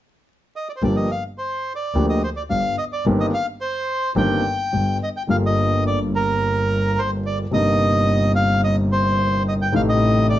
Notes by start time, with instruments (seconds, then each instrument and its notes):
0.56 bandoneon D#5
0.69 bandoneon D5
0.76 bandoneon C5
0.82 double bass G1, grand piano G1 G2 F3 A#3 D4 G4, bandoneon D5
0.96 bandoneon D#5
1.11 bandoneon F5
1.38 bandoneon C5
1.76 bandoneon D5
1.95 double bass D2, grand piano D2 D3 F3 A#3 D4 G4
2.10 bandoneon D#5
2.24 bandoneon C5
2.36 bandoneon D5
2.50 grand piano G1 G2, double bass G1, bandoneon F5
2.78 bandoneon D#5
2.93 bandoneon D5
3.06 double bass G1, grand piano G1 G2 D#3 A#3 C4 G4
3.20 bandoneon D#5
3.34 bandoneon F5
3.61 bandoneon C5
4.15 grand piano G1 G2 D#3 A#3 C4 G4, double bass G1, bandoneon G5
4.73 grand piano G1 G2, double bass G1
5.03 bandoneon D#5
5.17 bandoneon G5
5.27 grand piano G1 G2 D3 G3 A#3 F4, double bass G1, bandoneon F5
5.46 bandoneon D#5
5.87 bandoneon D5
6.16 bandoneon A#4
6.99 bandoneon C5
7.26 bandoneon D5
7.51 double bass G1, grand piano G1 G2 C3 G3 A#3, bandoneon D#5
7.55 grand piano D#4
8.35 bandoneon F5
8.64 bandoneon D#5
8.92 bandoneon C5
9.48 bandoneon D#5
9.62 bandoneon G5
9.72 double bass A1, grand piano A1 A2 C3 G3 A3 D#4, bandoneon F5
9.89 bandoneon D#5
10.30 bandoneon D5